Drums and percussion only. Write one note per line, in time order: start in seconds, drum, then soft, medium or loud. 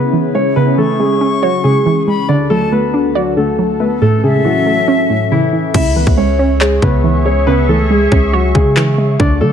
5.74 kick loud
5.74 crash loud
6.07 kick loud
6.61 clap loud
6.82 kick loud
8.12 kick loud
8.55 kick loud
8.77 clap loud
9.20 kick loud